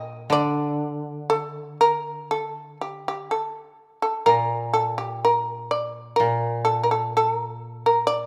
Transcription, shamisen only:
0.00 0.27 D#5 medium
0.32 1.77 D5 medium
1.30 1.77 A4 medium
1.81 2.27 A#4 medium
2.31 2.77 A4 medium
2.81 3.04 G4 medium
3.08 3.29 G4 medium
3.31 3.99 A4 medium
4.02 4.25 A4 medium
4.26 4.71 A#4 medium
4.73 4.96 A4 medium
4.98 5.21 G4 medium
5.25 5.68 A#4 medium
5.71 6.15 D5 medium
6.16 6.61 A#4 medium
6.65 6.81 A4 medium
6.83 6.89 A#4 medium
6.91 7.12 A4 medium
7.17 7.33 A4 medium
7.33 7.83 A#4 medium
7.86 8.06 A#4 medium
8.07 8.26 D5 medium

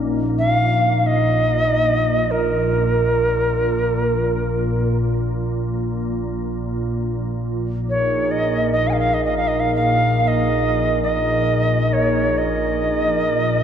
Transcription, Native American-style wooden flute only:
0.38 1.00 F5 medium
1.00 1.08 F5 medium
1.07 2.33 D#5 medium
2.31 4.98 A#4 medium
7.90 8.33 C#5 medium
8.31 8.70 D#5 medium
8.72 8.89 D#5 medium
8.87 8.91 F5 medium
8.87 8.94 G#5 medium
8.93 8.99 F5 medium
8.99 9.15 F5 medium
9.14 9.24 D#5 medium
9.24 9.35 D#5 medium
9.37 9.49 F5 medium
9.48 9.61 D#5 medium
9.60 9.74 F5 medium
9.75 10.29 F5 medium
10.28 11.02 D#5 medium
11.03 11.95 D#5 medium
11.93 12.40 C#5 medium
12.38 13.63 D#5 medium

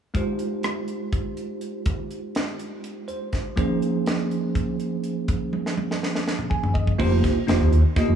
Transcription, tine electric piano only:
0.14 3.53 G#3 medium
0.14 3.54 D#4 medium
0.14 3.54 F4 soft
0.14 3.54 G4 medium
0.14 3.07 C5 medium
3.08 3.54 C5 medium
3.56 6.95 F3 medium
3.56 6.95 A#3 medium
3.56 6.95 C#4 medium
3.56 6.95 D#4 medium
3.56 6.96 G#4 medium
3.56 6.96 C5 medium
6.50 6.73 G#5 medium
6.74 6.97 D#5 medium
6.98 7.38 A#3 medium
6.98 7.38 D#4 medium
6.98 7.38 F4 medium
6.98 7.38 G4 medium
6.98 7.39 C5 medium
7.47 7.78 A#3 medium
7.47 7.78 D#4 medium
7.47 7.78 F4 medium
7.47 7.78 G4 medium
7.47 7.79 C5 medium
7.96 8.15 A#3 medium
7.96 8.15 D#4 medium
7.96 8.15 F4 medium
7.96 8.15 G4 medium
7.96 8.15 D#5 medium

